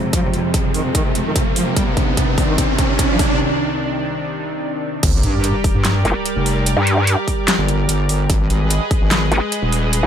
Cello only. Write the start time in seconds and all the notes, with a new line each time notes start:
0.03 C3
0.13 F3
0.24 C3
0.34 C3
0.54 C3
0.64 C3
0.75 D#3
0.85 C3
0.95 D#3
1.05 C3
1.15 C3
1.26 D#3
1.36 C3
1.46 C3
1.56 F3
1.66 C3
1.76 G3
1.87 C3
1.97 C3
2.17 C3
2.28 C3
2.38 C3
2.48 D#3
2.58 C3
2.69 C3
2.89 C3
2.99 C3
3.09 F3
3.20 C3
3.30 C3